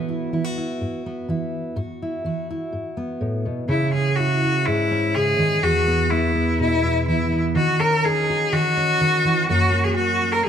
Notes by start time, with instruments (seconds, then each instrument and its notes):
Already playing: steel-string acoustic guitar G#2 E3 B3 F#4
0.09 steel-string acoustic guitar E4
0.33 steel-string acoustic guitar E3 E4
0.44 steel-string acoustic guitar F#4
0.58 steel-string acoustic guitar E4
0.81 steel-string acoustic guitar G#2
1.06 steel-string acoustic guitar B3
1.28 steel-string acoustic guitar E3 E4
1.76 steel-string acoustic guitar G#2 F#4
2.02 steel-string acoustic guitar E4
2.25 steel-string acoustic guitar E3 F#4
2.50 steel-string acoustic guitar E4
2.73 steel-string acoustic guitar G#2
2.97 steel-string acoustic guitar B3
3.21 steel-string acoustic guitar A2
3.45 steel-string acoustic guitar B2
3.68 steel-string acoustic guitar C#3, cello E4
3.93 steel-string acoustic guitar C#4, cello G#4
4.16 steel-string acoustic guitar E4, cello F#4
4.44 steel-string acoustic guitar E4
4.65 steel-string acoustic guitar G#2, cello E4
4.91 steel-string acoustic guitar C#4
5.15 steel-string acoustic guitar C#3, cello G#4
5.39 steel-string acoustic guitar D#3
5.62 steel-string acoustic guitar E2, cello F#4
5.87 steel-string acoustic guitar B3
6.10 steel-string acoustic guitar B3, cello E4
6.35 steel-string acoustic guitar B3
6.60 steel-string acoustic guitar B2, cello E4
6.84 steel-string acoustic guitar B3
7.08 steel-string acoustic guitar E3, cello E4
7.32 steel-string acoustic guitar B3
7.55 steel-string acoustic guitar D#3, cello F#4
7.80 steel-string acoustic guitar C#4, cello A#4
8.05 steel-string acoustic guitar D#4, cello G#4
8.30 steel-string acoustic guitar F#4
8.52 steel-string acoustic guitar D#3, cello F#4
8.77 steel-string acoustic guitar C#4
9.01 steel-string acoustic guitar D#3
9.25 steel-string acoustic guitar E3
9.49 steel-string acoustic guitar F#2 F#3 A#3 C#4, cello F#4
9.74 steel-string acoustic guitar A#3
9.84 cello G#4
9.95 steel-string acoustic guitar C#4, cello F#4
10.21 steel-string acoustic guitar C#4
10.32 cello A#4
10.45 cello G#4